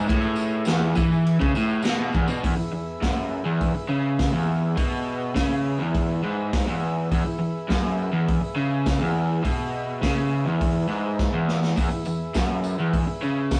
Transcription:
Already playing: G#4 B4 E5
0.07 A2, kick, tambourine, crash
0.21 tambourine
0.36 tambourine
0.51 tambourine
0.65 E2, snare, tambourine, crash
0.81 tambourine
0.95 E3 B5, kick, tambourine
1.11 tambourine
1.26 G#5, crash
1.40 C#3, kick, tambourine
1.55 A2, tambourine
1.68 F#5, tambourine
1.82 B2 E5, snare, tambourine, crash
2.12 E2 D5, kick, tambourine
2.28 B2, tambourine
2.43 E2 G#4 B4 E5, kick, open hi-hat
2.57 E2
2.73 E2
3.02 F#2, kick, snare, open hi-hat
3.45 E2
3.61 kick, open hi-hat
3.75 muted overdriven electric guitar stroke
3.88 C#3
4.19 kick, snare, open hi-hat
4.33 E2
4.76 B2, kick, open hi-hat
5.35 C#3, kick, snare, open hi-hat
5.79 E2
5.95 kick, open hi-hat
6.23 G#2 B5
6.53 G#5, kick, snare, open hi-hat
6.67 E2 F#5
6.83 E5
7.10 E2 G#4 B4 E5, kick, open hi-hat
7.25 E2
7.39 E2
7.68 F#2, kick, snare, open hi-hat
8.12 E2
8.28 kick, open hi-hat
8.41 muted overdriven electric guitar stroke
8.56 C#3
8.86 kick, snare, open hi-hat
9.00 E2
9.43 B2, kick, open hi-hat
10.02 C#3, kick, snare, open hi-hat
10.45 E2
10.61 kick, open hi-hat
10.88 G#2
11.19 kick, snare
11.33 E2
11.48 snare
11.63 snare
11.75 E2 G#4 B4 E5, kick, open hi-hat, tambourine
11.91 E2
12.05 E2, tambourine
12.34 F#2, kick, snare, open hi-hat, tambourine
12.64 tambourine
12.79 E2
12.93 kick, open hi-hat
13.08 muted overdriven electric guitar stroke
13.22 C#3, tambourine
13.51 kick, snare, open hi-hat, tambourine

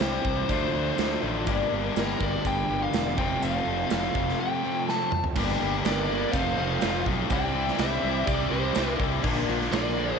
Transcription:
Already playing: C3 E3 G3 C4 G4 C5
0.00 C2 C3 G3 C4 D4 E4 G4, snare, closed hi-hat
0.24 C2 G3 D4 E4 G4, kick
0.48 D2 D3 F3 A3 D4 F4 A4, kick, closed hi-hat
0.60 D4 F4 A4
0.73 D2 F3 D4 F4 A4
0.85 D4 F4 A4
0.98 D2 D3 F3 D4 F4 A4, snare, closed hi-hat
1.10 D4 F4 A4
1.22 A1 D3 F3 A3 D4 F4 A4
1.46 G1 G2 D3 G3 A#3 D4 G4 A#4, kick, closed hi-hat
1.71 G1 G3 A#3 D4 A#4
1.84 G3 A#3 D4 A#4
1.96 G1 G2 D3 G3 A#3 D4 A#4, snare, closed hi-hat
2.20 G1 G2 D3 G3 A#3 D4 A#4 D5, kick
2.45 G1 G5, kick, closed hi-hat
2.57 G3 A#3 D4 A#4
2.69 G1 G3 A#3 D4 A#4
2.83 F5
2.93 E1 G2 D3 G3 A#3 D4 A#4, snare, closed hi-hat
3.05 G3 A#3 D4 A#4
3.15 F1 F2 C3 F3 A3 C4 G5, kick
3.19 F4 A4
3.42 F1 F3 C4 F4 A4 F5, closed hi-hat
3.67 F1
3.79 C4 F4 A4
3.89 F1 F2 C3 F3 A3 C4 F4 A4 F5, snare, closed hi-hat
4.15 F1 F3 C4 F4 A4, kick
4.29 snare
4.40 G5
4.52 C4 F4 A4
4.64 F2 C3 F3 A3 C4 F4 A4
4.76 C4 F4 A4
4.89 F3 C4 F4 A4 A5, snare
5.01 C4 F4 A4
5.12 F3 C4 F4, mid tom
5.16 A4
5.24 floor tom
5.35 G1 G2 D3 G3 A#3 D4 G4 A#4, kick, crash
5.49 snare
5.60 G1 G2 D3 G3 A#3 D4 G4
5.74 G3 A#3 D4 A#4
5.84 G1 G2 D3 G3 A#3 D4 G4 A#4 D5, snare, closed hi-hat
6.08 G2 D3 G3 A#3 D4 G4
6.12 A#4
6.31 F1 F2 C3 F3 A3 C4 F4 C5 F5, kick, closed hi-hat
6.36 F4 A4
6.46 C4 F4 A4
6.55 F1 F2 C3 F3 A3 C4 C5 F5
6.59 A3 C4 F4
6.69 C4 F4 A4
6.81 F1 F2 C3 F3 A3 C4 F4 A4, snare, closed hi-hat
7.05 B1 F2 C3 F3 A3 C4 F4 A4, kick
7.18 C4 F4 A4
7.30 C2 C3 E3 G3 C4 D4 E4 G4 D5 G5, kick, closed hi-hat
7.54 C3 E3 G3 C4 E4
7.66 D4 E4 G4, snare
7.77 C2 C3 E3 G3 C4 D4 E4 G4 C5 E5, snare, closed hi-hat
8.02 C2 C3 E3 G3 C4 D4 E4 G4
8.26 C2 C3 E3 G3 C4 E4 G4 D5, kick, closed hi-hat
8.38 D4 E4 G4
8.51 C2 C3 E3 G3 C4 E4 G4 C5
8.75 C2 C3 E3 G3 C4 D4 E4 G4, snare, closed hi-hat
8.99 C2 C3 E3 G3 C4 D4 E4 G4, kick
9.11 D4 E4 G4
9.22 A#1 A#2 D3 F3 A#3 D4 F4 A#4, kick, crash
9.47 A#1 A#2 D3 F3 A#3 D4 F4
9.59 F3 A#3 D4 A#4, snare
9.71 A#1 A#2 D3 F3 A#3 D4 F4 A#4 D5, snare, closed hi-hat
9.95 A#2 D3 F3 A#3 D4 F4
9.99 A#4

